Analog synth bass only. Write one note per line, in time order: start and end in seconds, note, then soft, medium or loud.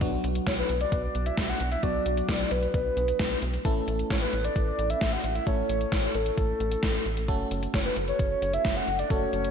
0.01 0.17 B1 loud
0.24 0.40 B1 loud
0.47 0.63 B1 loud
0.69 0.85 B1 loud
0.92 1.08 B1 loud
1.15 1.31 B1 medium
1.38 1.54 B1 loud
1.60 1.76 B1 loud
1.83 1.99 B1 loud
2.06 2.22 B1 loud
2.29 2.45 B1 loud
2.51 2.67 B1 loud
2.74 2.90 B1 loud
2.97 3.13 B1 loud
3.20 3.36 B1 loud
3.42 3.58 B1 loud
3.65 3.81 A1 loud
3.88 4.04 A1 medium
4.10 4.26 A1 loud
4.33 4.49 A1 loud
4.56 4.72 A1 medium
4.79 4.95 A1 loud
5.01 5.17 A1 loud
5.24 5.40 A1 loud
5.47 5.63 A1 loud
5.69 5.85 A1 loud
5.92 6.08 A1 loud
6.15 6.31 A1 loud
6.38 6.54 A1 loud
6.60 6.76 A1 loud
6.83 6.99 A1 loud
7.06 7.30 A1 loud
7.29 7.44 F#1 loud
7.51 7.67 F#1 loud
7.74 7.90 F#1 loud
7.97 8.12 F#1 loud
8.19 8.35 F#1 loud
8.42 8.58 F#1 loud
8.65 8.81 F#1 loud
8.88 9.04 F#1 loud
9.10 9.26 F#1 loud
9.33 9.49 F#1 medium